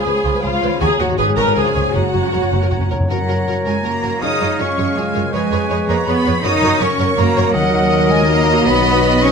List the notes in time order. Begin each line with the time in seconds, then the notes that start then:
Already playing: C#3 B3 C#4 F4 G#4 G#5
0.05 C#2 F3 B4 C#5 B5
0.15 C#2 G#4
0.24 C#2 F3 F4 C#5 B5
0.34 C#2 B4
0.42 C#2 F3 F4 G#4 C#5 F5 B5
0.52 C#2 F4
0.61 C#2 D#3 F3 B4 C#5 B5
0.68 A#3
0.72 C#4
0.77 F#4 G#4 C#5 G#5
0.81 D#2 F#3 A#5
0.99 D#2 G#2 F#3 F#4 A#4 C#5 F#5 A#5
1.05 D#2 G#3 F#4
1.10 B3
1.14 F#4 G#4 B4 G#5
1.18 G#1 G#2 F#3 G#4 G#5
1.27 G#2 G#4
1.37 G#1 G#2 C#3 F#3 F#4 A#4 B4 G#5 A#5
1.43 G#2 G#3 B4
1.48 C#4
1.52 C#2 F3 F4 G#4 C#5
1.56 C#3 G#4 G#5
1.64 C#3 F4
1.74 C#2 F#2 C#3 F3 C#5 G#5
1.81 A#3
1.86 C#4
1.90 F#2 F#3 C#4 F#4 C#5
1.94 F#1 F#2 F#4 F#5 A#5
2.08 F#2
2.13 F#1 F#2 F#3 F#4 C#5 A#5
2.23 F#2 C#4
2.29 F#1 F#2 F#3 A#4 C#5 A#5
2.36 F#2
2.42 F#2 F#4
2.51 F#1 F#2 F#3 C#4 C#5 A#5
2.58 F#2 A#4
2.65 F#2
2.71 F#1 F#2 F#3 F#4 C#5 A#5
2.79 F#2 C#4
2.86 F#2
2.90 F#1 F#2 F#3 A#4 C#5 A#5
3.00 F#2
3.09 F#2 F#3 F#4 A#4 C#5 F#5 A#5
3.20 C#3
3.28 F#2 A#3 F#4 A#4
3.38 C#4
3.47 F#2 F#4 A#4
3.57 A#4
3.66 F#2 G#3 F#4 A#4 G#5
3.75 F#5
3.84 F#2 A#3 F#4 A#4 A#5
3.94 F#4
4.03 F#2 A#3 F#4 A#4
4.13 C#3
4.21 F#2 G#3 D#4 F4 G#4 C#5 F5 D#6
4.31 C#3
4.40 F#2 G#3 F4 G#4 C#5
4.59 F#2 C#4 F4 G#4 C#5 C#6
4.68 G#4
4.77 F#2 F4 G#4 C#5
4.86 F5
4.96 F#2 G#3 F4 G#4 C#5 G#5
5.05 F4
5.14 F#2 G#3 F4 G#4 A#4 C#5
5.23 C#3
5.33 F2 G#3 G#4 B4 C#5 G#5
5.42 F3
5.51 F2 B3 G#4 B4 C#5
5.61 C#4
5.70 F2 G#4 B4 C#5
5.79 B4
5.88 F2 A#3 G#4 B4 C#5 A#5
5.98 G#5
6.07 F2 B3 G#4 B4 C#5 B5
6.16 G#4
6.25 F2 G#4 B4 C#5
6.35 F3
6.43 F#2 F#3 D#4 F#4 A#4 C#5 D#6
6.53 C#3
6.62 F#2 A#3 F#4 A#4 C#5
6.72 C#4
6.80 F#2 C#4 F#4 A#4 C#5 C#6
6.90 A#4
6.98 F#2 F#4 A#4 C#5
7.08 F#5
7.17 F#2 A#3 F#4 A#4 C#5 A#5
7.27 F#4
7.36 F#2 A#3 F#4 A#4 C#5
7.45 C#3
7.53 D#2 D#3 F#3 D#4 F#4 A#4 D#5 F#5
7.64 A#3
7.73 D#4
7.92 A#4
8.02 D#5
8.10 G#3 F#5 G#5
8.20 A#5
8.29 A#3 D#4 A#4 D#5 A#5
8.38 A#4
8.48 D#4
8.57 A#3
8.66 B1 B2 F#3 B3 D#4 F#4 B4 B5
8.76 F#3
8.85 B3
8.94 D#4
9.04 F#4
9.13 B4
9.22 C#4 D#5 C#6